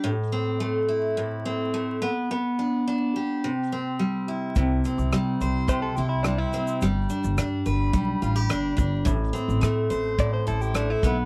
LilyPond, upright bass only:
\new Staff \with { instrumentName = "Upright bass" } { \clef bass \time 4/4 \key c \major \tempo 4 = 106 r1 | r1 | c,8 r16 c,16 c8 c,4 c,4 r8 | g,,8 r16 g,,16 g,8 g,,8 b,,8 a,,8 g,,8 g,,8 |
a,,8 r16 a,,16 a,8 a,,4 a,,4 b,,8 | }